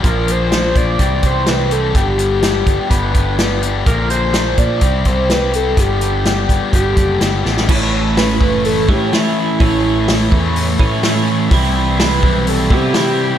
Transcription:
<<
  \new Staff \with { instrumentName = "Analog synth lead" } { \time 4/4 \key a \dorian \tempo 4 = 126 bes'8 c''4 d''4 c''8 b'8 a'8 | g'2 b'4. r8 | bes'8 c''4 d''4 c''8 b'8 a'8 | g'2 g'4. r8 |
r4 b'4 a'8 g'8 e'4~ | e'4 r2. | r4 b'4 a'8 g'8 g'4 | }
  \new Staff \with { instrumentName = "Distorted electric guitar" } { \time 4/4 \key a \dorian <bes, f bes d' f'>8 <bes d' f'>8 <f bes d' f'>4 <c e g c' g'>8 <g c' g'>8 <e g c' g'>8 <g c' g'>8 | <g, d g b d' g'>8 <g b d' g'>8 <g b d' g'>4 <g, d g b d' g'>8 <g b d' g'>8 <g b d' g'>8 <g b d' g'>8 | <bes, d f bes d' bes'>8 <f bes d' bes'>8 <f bes d' bes'>4 <c g c' e' g'>8 <c' e' g'>8 <g c' e' g'>8 <c' e' g'>8 | <g, d g b d' g'>8 <g b d' g'>8 <g b d' g'>4 <g, d g b d' g'>8 <g b d' g'>8 <g b d' g'>8 <g b d' g'>8 |
<a, e a cis' e'>4. <a, e a cis' e'>2~ <a, e a cis' e'>8 | <a, e a cis' e'>4. <a, e a cis' e'>2~ <a, e a cis' e'>8 | <c e g c' e'>4. <c e g c' e'>2~ <c e g c' e'>8 | }
  \new Staff \with { instrumentName = "Clean electric guitar" } { \time 4/4 \key a \dorian r1 | r1 | r1 | r1 |
<a, e a cis' e'>2~ <a, e a cis' e'>8 <a, e a cis' e'>8 <a, e a cis' e'>4 | <a, e a cis' e'>2~ <a, e a cis' e'>8 <a, e a cis' e'>8 <a, e a cis' e'>4 | <c e g e'>2~ <c e g e'>8 <c e g b e'>8 <c e g e'>4 | }
  \new Staff \with { instrumentName = "Picked electric bass" } { \clef bass \time 4/4 \key a \dorian bes,,4. bes,,8 c,8 c,4. | g,,4. g,,16 r16 g,,8 g,,4. | bes,,4. bes,8 c,8 c,4. | g,,4. g,,16 r16 g,,8 fis,,8 g,,8 a,,8 |
a,,4. fis,,4 a,8 r4 | a,,4. e,4 a,4. | c,4. b,,4 c8 r4 | }
  \new DrumStaff \with { instrumentName = "Drums" } \drummode { \time 4/4 <hh bd>8 hh8 <hh sn>8 <hh bd>8 <hh bd>8 <hh bd>8 <hh sn>8 hh8 | <hh bd>8 hh8 <hh sn>8 <hh bd>8 <hh bd>8 <hh bd>8 <hh sn>8 hh8 | <hh bd>8 hh8 <hh sn>8 <hh bd>8 <hh bd>8 <hh bd>8 <hh sn>8 hh8 | <hh bd>8 hh8 <hh sn>8 <hh bd>8 <hh bd>8 <hh bd>8 <hh sn>8 sn16 sn16 |
<cymc bd>4 <hho sn>8 bd8 hho8 bd8 <hho sn>4 | <hho bd>4 <hho sn>8 bd8 hho8 bd8 <hho sn>4 | <hho bd>4 <hho sn>8 bd8 hho8 bd8 <hho sn>4 | }
>>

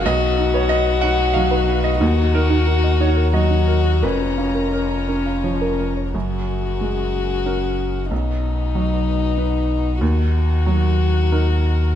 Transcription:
<<
  \new Staff \with { instrumentName = "Synth pluck" } { \time 3/4 \key ees \minor \tempo 4 = 91 b'16 r16 fis''16 b'16 dis''16 b''16 b'16 fis''16 dis''16 b'16 r16 dis''16 | ees'16 r16 bes'16 ees'16 ges'16 ees''16 ees'16 bes'16 ges'16 ees'16 r16 ges'16 | bes'16 r16 f''16 bes'16 des''16 bes''16 bes'16 f''16 des''16 bes'16 r16 des''16 | r2. |
r2. | r2. | }
  \new Staff \with { instrumentName = "String section" } { \time 3/4 \key ees \minor << { b'2. | bes''2.~ | bes''2. | bes'2. |
b'2. | bes'2. | } \\ { <dis' fis'>2.~ | <dis' fis'>2. | <des' f'>2. | <des' aes'>2. |
<dis' fis'>2.~ | <dis' fis'>2. | } >> }
  \new Staff \with { instrumentName = "Violin" } { \time 3/4 \key ees \minor fis'2. | ges'2 ges'4 | des'4 des'4. r8 | ges'2. |
dis'2. | ges'2. | }
  \new Staff \with { instrumentName = "Upright piano" } { \time 3/4 \key ees \minor << { dis''8. des''16 dis''8 fis''8 f''8. dis''16 | r8 bes'4 des''8 ees''4 | ces''4 bes'4. r8 | r2. |
r2. | r2. | } \\ { b,,8 dis'8 b'8 dis'8 fis8 b'8 | ees,8 ees'8 bes'8 ees'8 ges8 bes'8 | f,8 des'4 des'8 f8 bes'8 | ges,4 aes4 <des' bes'>4 |
b,,4 fis4 <dis' b'>4 | ees,4 ges4 <ees' bes'>4 | } >> }
  \new Staff \with { instrumentName = "Sub bass" } { \clef bass \time 3/4 \key ees \minor b,,2. | ees,2. | f,,2. | ges,,2. |
b,,2. | ees,2. | }
>>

